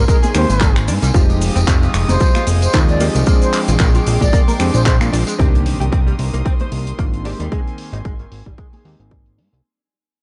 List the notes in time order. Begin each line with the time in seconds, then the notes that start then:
Already playing: D#3 A#3 C4 G#5 C6
0.08 G#3 A#4, kick, closed hi-hat, tambourine, cabasa
0.23 G#4, closed hi-hat, tambourine, high conga, cabasa
0.34 D#2 G#3 A#3 C4 D#4 G4 C5, finger snap, open hi-hat, ride, cabasa
0.49 G#1 A#3 C4 D#4 G#5, closed hi-hat, tambourine, cabasa
0.61 G3, kick, clap, closed hi-hat, tambourine, cabasa
0.76 finger snap, closed hi-hat, tambourine
0.88 G#2 D4, open hi-hat, ride, cabasa
1.02 C2 G3, closed hi-hat, tambourine, cabasa
1.14 F1 F3 G#3 C4 D#4 G4 F5 D#6, kick, closed hi-hat, tambourine, cabasa
1.30 closed hi-hat, tambourine
1.41 open hi-hat, ride, cabasa
1.56 F1 C4, closed hi-hat, tambourine, cabasa
1.67 F1 F3, kick, clap, closed hi-hat, tambourine, cabasa
1.82 C3, closed hi-hat, tambourine
1.94 F1, finger snap, open hi-hat, ride, cabasa
2.08 F1 D#3 C5, closed hi-hat, tambourine, high conga, cabasa
2.20 F3, kick, closed hi-hat, tambourine, cabasa
2.35 F4, finger snap, closed hi-hat, tambourine, high conga, cabasa
2.47 F1, open hi-hat, ride, cabasa
2.62 C5, closed hi-hat, tambourine, cabasa
2.73 D#2 D#3 F3 G#3 C4 D#4 F4, kick, clap, closed hi-hat, tambourine, cabasa
2.89 D5, closed hi-hat, tambourine
3.00 F3 G#3 A#3 C4 D#4 G4, open hi-hat, ride, cabasa
3.15 C2 D#3, closed hi-hat, tambourine, cabasa
3.26 F3 G#3 A#3 C4 D4 G#4 G5 C6 D6, kick, closed hi-hat, tambourine, cabasa
3.42 C5, closed hi-hat, tambourine, cabasa
3.53 clap, open hi-hat, ride, cabasa
3.68 A#1 F4, closed hi-hat, tambourine, low conga, cabasa
3.80 A#1 A#3, kick, clap, closed hi-hat, tambourine, cabasa
3.94 F3, closed hi-hat, tambourine, cabasa
4.07 A#1, open hi-hat, ride, cabasa
4.21 A#1 G#3 D5, kick, closed hi-hat, tambourine, high conga, cabasa
4.33 A#3, kick, closed hi-hat, tambourine, cabasa
4.48 A#4, open hi-hat, tambourine, high conga, cabasa
4.59 F2 F3 G#3 C4 D4 G4, finger snap, open hi-hat, ride, cabasa
4.74 A#1 F3 G#3 C4 D4 G#4 C5, closed hi-hat, tambourine, cabasa
4.86 G#3 C5, kick, clap, closed hi-hat, tambourine, cabasa
5.01 A#2, finger snap, closed hi-hat, tambourine, cabasa
5.13 A#1 D4, open hi-hat, ride, cabasa
5.27 G#3, closed hi-hat, tambourine, cabasa
5.39 C2 D#3 A#3 C4 D4 G4 A#4 C6 D#6, kick, closed hi-hat, impact
5.55 closed hi-hat
5.66 open hi-hat
5.80 C2 G4, closed hi-hat
5.92 C2 C4, kick, closed hi-hat
6.07 G3, closed hi-hat
6.19 C2, open hi-hat
6.33 C2 A#3, closed hi-hat
6.45 C4, kick, closed hi-hat
6.60 C5, closed hi-hat, high conga
6.72 C2, open hi-hat
6.87 closed hi-hat
6.98 G#1 D#3 A#3 C4 D4 F4, kick, closed hi-hat
7.13 closed hi-hat
7.25 G#3 A#3 C4 D4 D#4 G4 G#5, open hi-hat
7.40 D#2 G3, closed hi-hat
7.52 D#3 G#3 A#3 C4 G#5, kick, closed hi-hat
7.67 closed hi-hat
7.78 open hi-hat
7.93 G#1 D#4, closed hi-hat
8.05 G#1 G#3, kick, closed hi-hat
8.19 D#3, closed hi-hat
8.32 G#1, open hi-hat
8.46 G#1 G3, kick
8.58 G#3, kick, closed hi-hat
8.73 G#4, open hi-hat, high conga
8.84 D#2 G#3 A#3 C4 D#4 G4, open hi-hat
8.99 G#1 A#3 C4 D#4 G#5, closed hi-hat
9.11 G3, kick, closed hi-hat
9.26 closed hi-hat
9.38 G#2 D4, open hi-hat
9.53 C2 G3, closed hi-hat